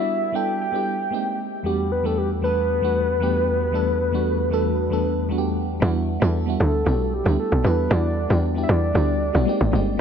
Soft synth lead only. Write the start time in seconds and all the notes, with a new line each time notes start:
Already playing: E5
0.35 G5
0.61 G5
1.66 G4
1.92 B4
2.06 A4
2.18 G4
2.44 B4
6.61 A4
7.14 G4
7.39 A4
7.66 B4
7.92 D5
8.63 E5
8.70 D5